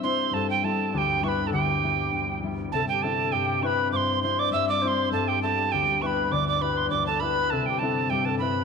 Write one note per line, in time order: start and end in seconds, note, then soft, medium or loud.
0.00 0.32 G2 medium
0.00 2.72 G2 medium
0.00 0.70 C4 soft
0.00 2.83 D4 soft
0.00 0.35 C6 medium
0.04 0.64 E4 medium
0.04 0.32 C5 medium
0.33 0.99 G2 medium
0.33 0.49 A4 medium
0.33 0.50 A5 loud
0.50 0.66 G5 medium
0.63 1.21 G3 soft
0.63 1.23 B3 soft
0.63 1.23 E4 soft
0.63 0.95 A4 medium
0.63 0.94 A5 medium
0.93 1.52 D2 medium
0.93 1.22 G4 medium
0.93 0.99 A5 medium
0.98 1.25 G5 medium
1.22 1.82 G3 medium
1.22 1.83 B3 soft
1.22 1.83 E4 medium
1.22 1.45 B4 medium
1.22 1.29 C#6 medium
1.28 1.49 B5 medium
1.46 1.55 A4 medium
1.46 1.52 A5 medium
1.53 2.13 D2 medium
1.53 2.43 G4 medium
1.53 2.39 G5 medium
1.83 2.42 G3 soft
1.83 2.43 B3 soft
1.83 2.44 E4 soft
2.14 2.78 D2 medium
2.43 2.78 G3 soft
2.43 2.79 B3 soft
2.43 3.04 E4 medium
2.72 7.51 G2 medium
2.72 3.38 C3 medium
2.72 2.80 A4 medium
2.72 2.88 A5 medium
2.89 3.05 G4 medium
2.89 3.04 G5 medium
3.02 3.62 C4 soft
3.02 3.62 D4 soft
3.02 3.63 E4 medium
3.02 3.34 A4 medium
3.02 3.34 A5 medium
3.32 3.91 G2 medium
3.32 3.61 G4 medium
3.32 3.64 G5 medium
3.62 4.23 C4 soft
3.62 4.23 D4 medium
3.62 4.23 E4 medium
3.62 3.94 B4 medium
3.62 3.67 C#6 medium
3.66 3.91 B5 medium
3.92 4.52 G2 medium
3.92 4.22 C5 medium
3.92 3.97 D6 medium
3.96 4.20 C6 loud
4.22 4.83 C4 soft
4.22 4.84 D4 soft
4.22 4.84 E4 medium
4.22 4.40 C5 medium
4.22 4.41 C6 medium
4.39 4.54 D5 medium
4.39 4.52 D6 loud
4.53 5.12 G2 medium
4.53 4.71 E5 medium
4.53 4.68 E6 medium
4.69 4.83 D5 medium
4.69 4.83 D6 medium
4.81 5.49 C4 soft
4.81 7.64 D4 soft
4.81 5.43 E4 medium
4.81 5.11 C5 medium
4.81 4.89 D6 medium
4.88 5.12 C6 medium
5.12 5.77 G2 medium
5.12 5.29 A4 medium
5.12 5.29 A5 loud
5.28 5.44 G4 medium
5.28 5.42 G5 medium
5.43 6.01 B3 soft
5.43 6.02 E4 soft
5.43 6.04 G4 medium
5.43 5.73 A4 medium
5.43 5.73 A5 loud
5.72 6.31 D2 medium
5.72 6.03 G4 medium
5.72 6.03 G5 medium
6.01 6.61 B3 soft
6.01 6.62 E4 soft
6.01 6.62 G4 medium
6.01 6.34 B4 medium
6.01 6.07 C#6 medium
6.06 6.33 B5 medium
6.32 6.91 D2 medium
6.32 6.48 D5 medium
6.32 6.47 D6 loud
6.48 6.62 D5 medium
6.48 6.63 D6 medium
6.61 7.21 B3 soft
6.61 7.22 E4 soft
6.61 7.22 G4 soft
6.61 6.92 B4 medium
6.61 6.79 B5 medium
6.77 6.90 C6 medium
6.90 7.56 D2 medium
6.90 7.09 D5 medium
6.90 7.06 D6 medium
7.07 7.22 A4 medium
7.07 7.22 A5 medium
7.20 7.58 B3 medium
7.20 7.82 E4 soft
7.20 8.64 G4 medium
7.20 7.53 B4 medium
7.20 7.52 B5 medium
7.50 8.64 G2 medium
7.50 8.16 C3 medium
7.50 7.70 A4 medium
7.50 7.67 A5 medium
7.66 7.80 G4 medium
7.66 7.80 G5 medium
7.79 8.41 C4 soft
7.79 8.41 D4 soft
7.79 8.42 E4 soft
7.79 8.12 A4 medium
7.79 8.11 A5 medium
8.10 8.64 G2 medium
8.10 8.23 G4 medium
8.10 8.27 G5 medium
8.24 8.29 B4 medium
8.24 8.38 A5 medium
8.28 8.43 A4 medium
8.39 8.64 C4 soft
8.39 8.64 D4 soft
8.39 8.64 E4 medium
8.39 8.64 B4 medium
8.39 8.64 B5 medium